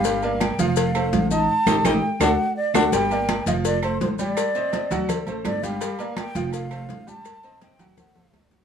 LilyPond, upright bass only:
\new Staff \with { instrumentName = "Upright bass" } { \clef bass \time 4/4 \key g \minor \tempo 4 = 166 g,,4. f,,4. a,,4 | r8 a,,8 a,,8 r8 d,8 r4 d,8 | g,,4. f,,4. a,,4 | r4. d,4 a,,8 g,,4 |
r4. f,,4. r4 | r4. d,4. d,4 | }